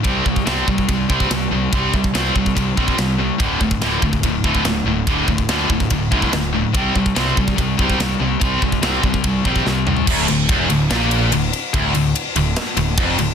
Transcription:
<<
  \new Staff \with { instrumentName = "Distorted electric guitar" } { \clef bass \time 4/4 \key c \mixolydian \tempo 4 = 144 <c g c'>8 <c g>8 <c g c'>8 <c g>8 <c g>8 <c g c'>8 <c g>8 <c g>8 | <c g c'>8 <c g>8 <c g c'>8 <c g>8 <c g>8 <c g c'>8 <c g>8 <c g>8 | <d, a, d>8 <d, a,>8 <d, a, d>8 <d, a,>8 <d, a,>8 <d, a, d>8 <d, a,>8 <d, a,>8 | <d, a, d>8 <d, a,>8 <d, a, d>8 <d, a,>8 <d, a,>8 <d, a, d>8 <d, a,>8 <d, a,>8 |
<c g c'>8 <c g>8 <c g c'>8 <c g>8 <c g>8 <c g c'>8 <c g>8 <c g>8 | <c g c'>8 <c g>8 <c g c'>8 <c g>8 <c g>8 <c g c'>8 <c g>8 <c g>8 | d,8 d,8 e,8 d,8 bes,4 d,8 r8 | d,8 d,8 r8 d,8 r8 d,8 f,8 d,8 | }
  \new Staff \with { instrumentName = "Distorted electric guitar" } { \clef bass \time 4/4 \key c \mixolydian <c g c'>8 <c g>8 <c g c'>8 <c g>8 <c g>8 <c g c'>8 <c g>8 <c g>8 | <c g c'>8 <c g>8 <c g c'>8 <c g>8 <c g>8 <c g c'>8 <c g>8 <c g>8 | <d, a, d>8 <d, a,>8 <d, a, d>8 <d, a,>8 <d, a,>8 <d, a, d>8 <d, a,>8 <d, a,>8 | <d, a, d>8 <d, a,>8 <d, a, d>8 <d, a,>8 <d, a,>8 <d, a, d>8 <d, a,>8 <d, a,>8 |
<c g c'>8 <c g>8 <c g c'>8 <c g>8 <c g>8 <c g c'>8 <c g>8 <c g>8 | <c g c'>8 <c g>8 <c g c'>8 <c g>8 <c g>8 <c g c'>8 <c g>8 <c g>8 | d,8 d,8 e,8 d,8 bes,4 d,8 r8 | d,8 d,8 r8 d,8 r8 d,8 f,8 d,8 | }
  \new Staff \with { instrumentName = "Picked electric bass" } { \clef bass \time 4/4 \key c \mixolydian c,8 c,8 c,8 c,8 c,8 c,8 c,8 c,8 | c,8 c,8 c,8 c,8 c,8 bes,,8 c,4 | d,,8 d,,8 d,,8 d,,8 d,,8 d,,8 d,,8 d,,8 | d,,8 d,,8 d,8 d,,8 d,,8 c,8 d,,4 |
c,8 c,8 c,8 c,8 c,8 c,8 c,8 c,8 | c,8 c,8 c,8 c,8 c,8 bes,,8 c,4 | d,,8 d,,8 e,,8 d,,8 bes,,4 d,,8 r8 | d,,8 d,,8 r8 d,,8 r8 d,,8 f,,8 d,,8 | }
  \new DrumStaff \with { instrumentName = "Drums" } \drummode { \time 4/4 <bd rb>8 bd16 bd16 <rb sn>8 bd16 bd16 <bd rb>8 bd16 bd16 <rb sn>4 | <bd rb>8 bd16 bd16 <rb sn>8 bd16 bd16 <bd rb>8 bd16 bd16 <rb sn>4 | <bd rb>8 bd16 bd16 <rb sn>8 bd16 bd16 <bd rb>8 bd16 bd16 <rb sn>4 | <bd rb>8 bd16 bd16 <rb sn>8 bd16 bd16 <bd rb>8 bd16 bd16 <rb sn>4 |
<bd rb>8 bd16 bd16 <rb sn>8 bd16 bd16 <bd rb>8 bd16 bd16 <rb sn>4 | <bd rb>8 bd16 bd16 <rb sn>8 bd16 bd16 <bd rb>8 bd16 bd16 sn8 toml16 tomfh16 | <cymc bd>8 cymr8 <bd cymr>8 cymr8 <cymr sn>8 cymr8 cymr8 cymr8 | <bd cymr>8 cymr8 cymr8 cymr8 <cymr sn>8 cymr8 <bd cymr>8 cymr8 | }
>>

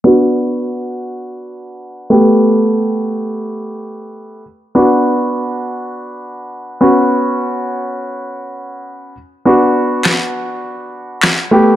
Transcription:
<<
  \new Staff \with { instrumentName = "Grand piano" } { \time 4/4 \key b \minor \tempo 4 = 102 <b d' fis'>2.~ <b d' fis'>8 <a b g'>8~ | <a b g'>2.~ <a b g'>8 r8 | <b d' fis'>2.~ <b d' fis'>8 <b cis' fis'>8~ | <b cis' fis'>2.~ <b cis' fis'>8 r8 |
<b d' fis'>2.~ <b d' fis'>8 <a b g'>8 | }
  \new DrumStaff \with { instrumentName = "Drums" } \drummode { \time 4/4 r4 r4 r4 r4 | r4 r4 r4 r4 | r4 r4 r4 r4 | r4 r4 r4 r4 |
r4 <hc sn>4 r4 <hc sn>4 | }
>>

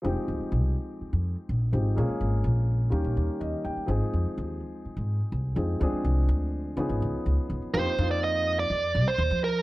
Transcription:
<<
  \new Staff \with { instrumentName = "Lead electric guitar" } { \time 4/4 \key f \minor \tempo 4 = 125 r1 | r1 | r1 | r1 |
c''8. d''16 ees''8. d''4 c''8. bes'8 | }
  \new Staff \with { instrumentName = "Grand piano" } { \time 4/4 \key f \minor << { r1 | r2. ees''8 g''8 | r1 | r1 |
r1 | } \\ { <f aes c' ees' g'>2.~ <f aes c' ees' g'>8 <f aes c' ees' g'>8 | <f aes bes des' aes'>2 <ees g bes des' g'>2 | <f aes c' ees' aes'>2.~ <f aes c' ees' aes'>8 <f aes c' ees' aes'>8 | <f aes c' d' aes'>2 <f ces' des' ees' aes'>2 |
<f bes c' ees' g'>8 <f bes c' ees' f'>4. r2 | } >> }
  \new Staff \with { instrumentName = "Upright bass" } { \clef bass \time 4/4 \key f \minor f,,16 r16 d,16 r16 c,8 r8. f,8 r16 bes,,8 aes,,8 | bes,,16 r16 aes,,8 bes,,4 ees,16 bes,,16 ees,16 r16 ees,16 r16 ees,16 r16 | aes,,16 r16 f,16 r16 ees,8 r8. aes,8 r16 c,8 f,8 | d,16 r16 c,8 d,4 des,16 aes,,16 des,16 r16 des,16 r16 des,16 r16 |
f,16 r16 f,4. f,8 c,16 r16 ees,16 f8. | }
>>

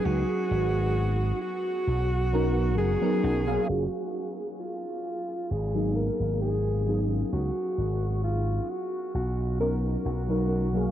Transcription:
<<
  \new Staff \with { instrumentName = "Alto saxophone" } { \time 4/4 \key fis \major \tempo 4 = 66 fis'4. fis'4. gis'4 | fis'4 eis'4 gis'8 ais'8 gis'8 r8 | fis'4 eis'8 fis'8 fis'8 ais'8 fis'4 | }
  \new Staff \with { instrumentName = "FM electric piano" } { \time 4/4 \key fis \major <fis b cis' dis' gis'>4. r4 <fis b cis' dis' ais'>8. <fis b cis' dis' ais'>8 <fis ais cis' gis' eis''>16 | <fis ais cis' eis' gis'>16 r2 <fis ais b dis' gis'>4~ <fis ais b dis' gis'>16 <fis b cis' dis' gis'>8~ | <fis b cis' dis' gis'>4. r4 <fis b cis' dis' ais'>8. <fis b cis' dis' ais'>8 <fis ais cis' gis' eis''>16 | }
  \new Staff \with { instrumentName = "Slap bass" } { \clef bass \time 4/4 \key fis \major cis,16 r16 gis,,4 r8 b,,4 fis,,16 r16 b,,16 r16 | fis,,16 r4. r16 gis,,8. gis,,4~ gis,,16 | cis,16 r16 gis,,4 r8 b,,4 b,,4 | }
>>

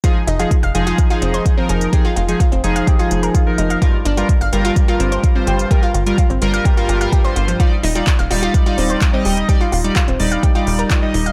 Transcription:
<<
  \new Staff \with { instrumentName = "Synth pluck" } { \time 4/4 \key f \dorian \tempo 4 = 127 f'16 r16 ees'16 f'16 r16 f''16 f'16 f'16 r16 f'16 c'16 c''16 r16 c'16 aes'16 r16 | g'16 f'16 f'16 r16 f'16 c'16 r16 f''16 g'16 f'16 r16 bes'16 f'16 r16 ees'16 f''16 | f'16 r16 d'16 f'16 r16 f''16 f'16 f'16 r16 f'16 c'16 c''16 r16 c'16 g'16 r16 | g'16 f'16 f'16 r16 f'16 c'16 r16 f''16 g'16 f'16 g'16 f''16 g'16 c''16 f'16 f16 |
f'16 r16 ees'16 f'16 r16 f''16 f'16 f'16 r16 f'16 c'16 c''16 r16 c'16 g'16 r16 | g'16 f'16 f'16 r16 f'16 c'16 r16 f''16 g'16 f'16 r16 bes'16 f'16 r16 ees'16 f''16 | }
  \new Staff \with { instrumentName = "Analog polysynth" } { \time 4/4 \key f \dorian <f ees' aes'>16 r8 <f ees' aes'>16 r8 <f ees' aes'>8. <f ees' aes'>4 <f ees' bes'>8. | <f ees' aes'>16 r8 <f ees' aes'>16 r8 <f ees' aes'>8. <f ees' aes'>4 <f ees' bes'>8. | <g, g f' bes'>16 r8 <g, g f' bes'>16 r8 <g, g f' bes'>8. <g, g f' bes'>4 <g, g f' c''>8. | <g, g f' bes'>16 r8 <g, g f' bes'>16 r8 <g, g f' bes'>8. <g, g f' bes'>8 <g, g f' bes'>8 <g, g f' c''>8. |
<g ees' d''>16 r8 <g ees' d''>16 r8 <g ees' d''>8. <g ees' d''>4 <g ees' ees''>8. | <g ees' d''>16 r8 <g ees' d''>16 r8 <g ees' d''>8. <g ees' d''>4 <g ees' ees''>8. | }
  \new Staff \with { instrumentName = "Analog synth bass" } { \clef bass \time 4/4 \key f \dorian r8 f,,8 r16 f,,16 f,,8 r8 f,,8 r8 f,,8 | r8 f,,8 r16 f,,16 f,,8 r8 f,,8 r8 f,,8 | r8 g,,8 r16 g,,16 g,,8 r8 g,,8 r8 g,,8 | r8 g,,8 r16 g,,16 g,,8 r8 g,,8 r8 g,,8 |
r8 ees,,8 r16 ees,,16 ees,,8 r8 ees,,8 r8 ees,,8 | r8 ees,,8 r16 ees,,16 ees,,8 r8 ees,,8 r8 ees,,8 | }
  \new DrumStaff \with { instrumentName = "Drums" } \drummode { \time 4/4 <hh bd>8 hh16 hh16 <hh bd>16 hh16 hh16 hh16 <hh bd>16 hh16 hh16 hh16 <hh bd>8 hh16 hh16 | <hh bd>8 hh16 hh16 <hh bd>16 hh16 hh16 hh16 <hh bd>16 hh16 hh16 hh16 <hh bd>8 hh16 hh16 | <hh bd>8 hh16 hh16 <hh bd>16 hh16 hh16 hh16 <hh bd>16 hh16 hh16 hh16 <hh bd>8 hh16 hh16 | <hh bd>8 hh16 hh16 <hh bd>16 hh16 hh16 hh16 <hh bd>16 hh16 hh16 hh16 <hh bd>8 hh16 hh16 |
<hh bd>8 hho16 hh16 <hc hh bd>16 hh16 hho16 hh16 <hh bd>16 hh16 hho16 hh16 <hc hh bd>8 hho16 hh16 | <hh bd>8 hho16 hh16 <hc hh bd>16 hh16 hho16 hh16 <hh bd>16 hh16 hho16 hh16 <hc hh bd>8 hho16 hh16 | }
>>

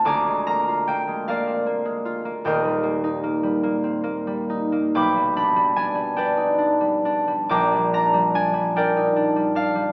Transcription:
<<
  \new Staff \with { instrumentName = "Harp" } { \time 6/8 \key ees \major \tempo 4. = 49 << { <f'' d'''>8 bes''8 g''8 f''4. | g''2. | \key g \phrygian d'''8 b''8 aes''8 g''4. | d'''8 bes''8 aes''8 g''4 f''8 | } \\ { <aes'' bes''>4. <bes' d''>4. | <bes' ees''>2. | <g'' b''>4. <b' d''>4. | <g'' bes''>4. <bes' d''>4. | } >> }
  \new Staff \with { instrumentName = "Harp" } { \time 6/8 \key ees \major <d, f'>16 aes16 bes16 f'16 bes16 aes16 bes16 c'16 bes16 aes16 f'16 bes16 | <ees,, ees,>16 g16 bes16 ees'16 bes16 g16 bes16 c'16 bes16 g16 ees'16 bes16 | \key g \phrygian b,,16 g16 d'16 g16 d'16 g16 d'16 ees'16 d'16 g16 d'16 g16 | bes,,16 g16 d'16 g16 d'16 g16 d'16 ees'16 d'16 g16 d'16 g16 | }
>>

